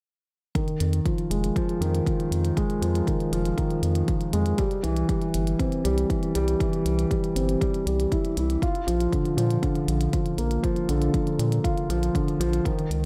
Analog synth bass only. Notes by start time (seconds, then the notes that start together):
0.80 F2
1.30 F1
1.81 F2
2.31 F2
2.82 F2
3.32 F1
3.82 F2
4.33 F2
4.84 C2
5.34 G1
5.85 C2
6.35 C2
6.85 C2
7.36 G1
7.86 C2
8.37 C2
8.87 A#1
9.37 A#2
9.88 A#1
10.38 A#1
10.89 A#1
11.39 A#2
11.89 A#1
12.40 A#1
12.90 C#2